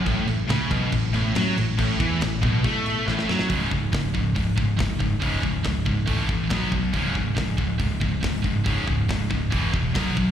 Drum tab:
CC |x-x-x-x-x-x-x-x-|x-x-x-x-x-x-----|----------------|----------------|
HH |----------------|----------------|o---o---o---o---|o---o---o---o---|
SD |----o-------o---|----o-------oooo|----o-------o---|----o-------o---|
BD |o-----o-o-------|o-o---o-o-------|o-o-o-o-o-o-o-o-|o-o-o-o-o-o-o-o-|

CC |----------------|----------------|
HH |o---o---o---o---|o---o---o---o---|
SD |----o-------o---|----o-------o---|
BD |o-o-o-o-o-o-o-o-|o-o-o-o-o-o-o-o-|